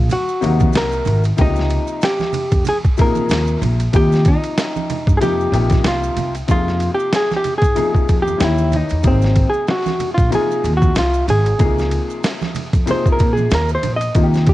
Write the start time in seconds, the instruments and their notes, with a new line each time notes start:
0.09 hollow-body jazz guitar F#4, ride, high conga, low conga, maracas
0.28 maracas
0.41 upright bass D#2, upright piano C3 F#3 A#3 D#4 F#4, ride, maracas
0.60 kick, high conga, maracas
0.73 upright bass C2, snare, hi-hat pedal, ride, maracas
0.77 hollow-body jazz guitar A#4
0.92 maracas
1.05 upright bass G#1, ride, low conga, maracas
1.24 ride, maracas
1.37 upright bass C#2, upright piano C3 F3 A#3 D#4 G4, kick, ride, maracas
1.41 hollow-body jazz guitar D#4
1.56 snare, maracas
1.69 ride, maracas
1.87 maracas
2.01 hollow-body jazz guitar G4, snare, hi-hat pedal, ride, maracas
2.20 snare, high conga, maracas
2.33 ride, low conga, maracas
2.52 upright bass F2, kick, ride, maracas
2.65 hollow-body jazz guitar G#4, ride, high conga, low conga, maracas
2.84 kick, maracas
2.97 upright bass A#2, upright piano C3 F3 A#3 D#4 G#4, hollow-body jazz guitar A#4, kick, ride, maracas
3.15 high conga, maracas
3.29 upright bass D#2, snare, hi-hat pedal, ride, maracas
3.48 maracas
3.62 upright bass A#1, ride, low conga, maracas
3.80 ride, maracas
3.93 upright bass D#2, upright piano C3 F3 A#3 D#4 G4, hollow-body jazz guitar G4, kick, ride, maracas
4.12 snare, maracas
4.25 hollow-body jazz guitar D#4, kick, ride, maracas
4.44 ride, maracas
4.58 snare, hi-hat pedal, ride, maracas
4.76 high conga, maracas
4.90 ride, low conga, maracas
5.07 upright bass G2, kick, maracas
5.17 upright bass F2, upright piano C3 F3 A#3, hollow-body jazz guitar G#4
5.21 upright piano D#4 G4, hollow-body jazz guitar G4, ride, high conga, low conga, maracas
5.41 maracas
5.52 upright bass A#1, upright piano C3 F3 A#3 D#4 G4, ride, maracas
5.70 kick, snare, ride, high conga, maracas
5.84 upright bass C2, hollow-body jazz guitar F4, snare, hi-hat pedal, ride, maracas
6.04 maracas
6.16 upright bass C2, ride, low conga, maracas
6.35 ride, maracas
6.48 upright bass F2, upright piano C3 F3 A#3 D#4 G#4, hollow-body jazz guitar F4, kick, ride, maracas
6.68 snare, maracas
6.80 ride, maracas
6.95 hollow-body jazz guitar G4
7.00 maracas
7.13 hollow-body jazz guitar G#4, snare, hi-hat pedal, ride, maracas
7.31 snare, high conga, maracas
7.36 hollow-body jazz guitar G4
7.44 ride, low conga, maracas
7.58 hollow-body jazz guitar G#4, kick, ride
7.62 upright bass G#2, maracas
7.75 upright piano C3 F3 A#3 D#4 G#4, ride, high conga, low conga, maracas
7.95 kick, maracas
8.09 upright bass F2, kick, ride, maracas
8.22 hollow-body jazz guitar G4
8.28 high conga, maracas
8.38 upright bass D#2, upright piano D#3 E3 A#3 C#4 G4, snare, hi-hat pedal, ride, maracas
8.44 hollow-body jazz guitar E4
8.58 maracas
8.72 ride, low conga, maracas
8.76 hollow-body jazz guitar D#4
8.89 upright bass E2, ride, maracas
9.03 upright bass G#1, upright piano C3 F#3 A#3 D#4 G#4, kick, ride, maracas
9.07 hollow-body jazz guitar C4
9.22 snare, maracas
9.36 kick, ride, maracas
9.50 hollow-body jazz guitar G#4, maracas
9.67 hollow-body jazz guitar F#4, snare, hi-hat pedal, ride, maracas
9.86 snare, high conga, maracas
10.00 ride, low conga, maracas
10.14 upright bass A#1, hollow-body jazz guitar F4, kick, ride
10.19 maracas
10.30 upright piano C3 F3 A#3 D#4 F4, ride, high conga, low conga, maracas
10.35 hollow-body jazz guitar G#4
10.51 maracas
10.64 upright bass D#2, ride, maracas
10.77 hollow-body jazz guitar F#4
10.82 kick, high conga, maracas
10.95 upright bass C2, hollow-body jazz guitar F4, snare, hi-hat pedal, ride, maracas
11.14 maracas
11.28 upright bass G#1, hollow-body jazz guitar G#4, ride, low conga, maracas
11.46 ride, maracas
11.58 upright bass C#2, upright piano C3 F3 A#3 D#4 G#4, kick, ride, maracas
11.79 snare, maracas
11.91 ride, maracas
12.10 maracas
12.24 snare, hi-hat pedal, ride, maracas
12.41 snare, high conga, maracas
12.55 ride, low conga, maracas
12.73 upright bass F2, kick, ride, maracas
12.86 upright piano C3 F3 A#3 D#4 G#4, ride, high conga, low conga, maracas
12.91 hollow-body jazz guitar C5
13.06 kick, maracas
13.12 hollow-body jazz guitar A#4
13.19 upright bass A#2, kick, ride, maracas
13.33 hollow-body jazz guitar G#4
13.37 high conga, maracas
13.50 upright bass D#2, snare, hi-hat pedal, ride, maracas
13.55 hollow-body jazz guitar A#4
13.69 maracas
13.75 hollow-body jazz guitar C5
13.83 upright bass A#1, ride, low conga, maracas
13.96 hollow-body jazz guitar D#5
14.01 ride, maracas
14.15 upright bass D#2, upright piano C3 F3 A#3 D#4 F4, kick, ride, maracas
14.23 upright piano G4
14.34 snare, maracas
14.46 hollow-body jazz guitar G4, kick, ride, maracas